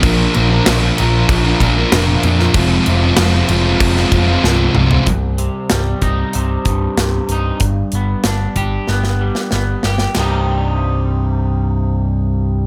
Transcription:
<<
  \new Staff \with { instrumentName = "Distorted electric guitar" } { \time 4/4 \key c \minor \tempo 4 = 94 <bes, f bes d' f' bes'>8 <bes d' f' bes'>16 <bes d' f' bes'>16 <bes, f bes d' f' bes'>16 <bes d' f' bes'>16 <bes d' f' bes'>8. <bes d' f' bes'>16 <bes d' f' bes'>16 <bes d' f' bes'>16 <bes, f bes d' f' bes'>8 <bes d' f' bes'>16 <bes d' f' bes'>16 | <f, c f aes c' f'>8 <f aes c' f'>16 <f aes c' f'>16 <f, c f aes c' f'>16 <f aes c' f'>16 <f aes c' f'>8. <f aes c' f'>16 <f aes c' f'>16 <f aes c' f'>16 <f, c f aes c' f'>8 <f aes c' f'>16 <f aes c' f'>16 | r1 | r1 |
r1 | }
  \new Staff \with { instrumentName = "Clean electric guitar" } { \clef bass \time 4/4 \key c \minor r1 | r1 | c,8 c8 g8 ees'8 c8 g,8 c8 ees'8 | g,8 b8 d'8 g'8 b8 g8 b8 g'8 |
<c, g, c g ees'>1 | }
  \new Staff \with { instrumentName = "Picked electric bass" } { \clef bass \time 4/4 \key c \minor bes,,8 bes,,8 bes,,8 bes,,8 bes,,8 bes,,8 f,,8 f,8 | f,,8 f,,8 f,,8 f,,8 f,,8 f,,8 c,,8 c,8 | c,,4 c,,8 c,,8 c,,8 c,,8 c,,8 c,,8 | g,,8 g,,8 g,,8 g,,8 g,,4 g,,8 g,,8 |
c,,1 | }
  \new DrumStaff \with { instrumentName = "Drums" } \drummode { \time 4/4 <cymc bd>8 cymc8 <cymc sn>8 cymc8 <cymc bd>8 <cymc bd>8 <cymc sn>8 cymc16 sn16 | <cymc bd>8 cymc8 <cymc sn>8 cymc8 <cymc bd>16 sn16 <cymc bd>8 sn8 toml16 tomfh16 | <hh bd>8 hh8 <hh sn>8 <hh bd>8 hh8 <hh bd>8 <hh sn>8 hh8 | <hh bd>8 hh8 <hh sn>8 <hh bd>8 sn16 sn8 sn16 sn8 sn16 sn16 |
<rb sn>4 r4 r4 r4 | }
>>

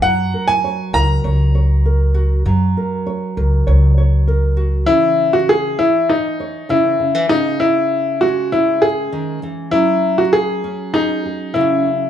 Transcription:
<<
  \new Staff \with { instrumentName = "Upright piano" } { \time 4/4 \key cis \dorian \tempo 4 = 99 fis''8. gis''8. ais''2~ ais''8~ | ais''2. r4 | e'8. fis'16 gis'8 e'8 dis'4 e'4 | dis'8 e'4 fis'8 e'8 gis'4 r8 |
e'8. fis'16 gis'4 dis'4 e'4 | }
  \new Staff \with { instrumentName = "Nylon-string guitar" } { \time 4/4 \key cis \dorian << { r8 ais'8 cis''8 ais'8 cis''8 cis''8 ais'4 | r8 ais'8 cis''8 ais'8 cis''8 cis''8 ais'4 | e4. r8 cis''8 cis''8 cis16 e16 cis16 e16 | gis'2 cis'2 |
cis'4. r8 gis'8 gis'8 cis'8 cis'8 | } \\ { fis2.~ fis8 fis'8 | fis2.~ fis8 fis'8 | cis4. e4. cis4 | cis4. gis4. dis8 e8 |
fis4. cis'4. cis4 | } >> }
  \new Staff \with { instrumentName = "Upright bass" } { \clef bass \time 4/4 \key cis \dorian fis,8 r4 cis,8 cis,2 | fis,8 r4 cis,8 cis,2 | r1 | r1 |
r1 | }
>>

